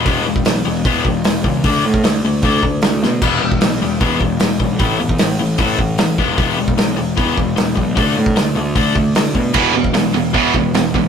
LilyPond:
<<
  \new Staff \with { instrumentName = "Overdriven electric guitar" } { \clef bass \time 4/4 \key e \major \tempo 4 = 152 <e gis b>8 <e gis>8 <e gis>8 <e gis>8 <e gis b>8 <e gis>8 <e gis>8 <e gis>8 | <d a d'>8 <d a>8 <d a>8 <d a>8 <d a d'>8 <d a>8 <d a>8 <d a>8 | <e gis b>8 <e gis>8 <e gis>8 <e gis>8 <e gis b>8 <e gis>8 <e gis>8 <e gis>8 | <a, e a>8 <a, e>8 <a, e>8 <a, e>8 <a, e a>8 <a, e>8 <a, e>8 <e gis b>8 |
<e gis b>8 <e gis>8 <e gis>8 <e gis>8 <e gis b>8 <e gis>8 <e gis>8 <e gis>8 | <d a d'>8 <d a>8 <d a>8 <d a>8 <d a d'>8 <d a>8 <d a>8 <d a>8 | <e gis b>8 <e gis>8 <e gis>8 <e gis>8 <e gis b>8 <e gis>8 <e gis>8 <e gis>8 | }
  \new Staff \with { instrumentName = "Distorted electric guitar" } { \clef bass \time 4/4 \key e \major r1 | r1 | r1 | r1 |
r1 | r1 | <e, b, e>8 <e, b,>8 <e, b,>8 <e, b,>8 <e, b, e>8 <e, b,>8 <e, b,>8 <e, b,>8 | }
  \new Staff \with { instrumentName = "Picked electric bass" } { \clef bass \time 4/4 \key e \major e,,8 e,,8 b,,8 e,,8 e,8 e,,8 e,,8 cis,8 | d,8 a,8 d,8 d,8 d,8 d,8 d,8 b,8 | e,,8 e,,8 b,,8 e,,8 e,8 e,,8 e,,8 b,,8 | a,,8 e,8 a,,8 a,,8 a,,8 a,,8 a,,8 e,,8 |
e,,8 e,,8 b,,8 e,,8 e,8 e,,8 e,,8 b,,8 | d,8 a,8 d,8 d,8 d,8 d,8 d,8 b,8 | e,,8 e,,8 b,,8 e,,8 e,8 e,,8 e,,8 b,,8 | }
  \new DrumStaff \with { instrumentName = "Drums" } \drummode { \time 4/4 <hho bd>8. bd16 <hho sn>4 <hho bd>8 bd8 <hho sn>8 bd8 | <hho bd>8. bd16 <hho sn>4 <hho bd>8 bd8 <hho sn>8 sn8 | <cymc bd>8. bd16 <hho sn>4 <hho bd>8 bd8 <hho sn>8 bd8 | <hho bd>8. bd16 <hho sn>4 <hho bd>8 bd8 <hho sn>8 bd8 |
<hho bd>8. bd16 <hho sn>4 <hho bd>8 bd8 <hho sn>8 bd8 | <hho bd>8. bd16 <hho sn>4 <hho bd>8 bd8 <hho sn>8 bd8 | <cymc bd>8. bd16 <hho sn>4 <hho bd>8 bd8 <hho sn>8 bd8 | }
>>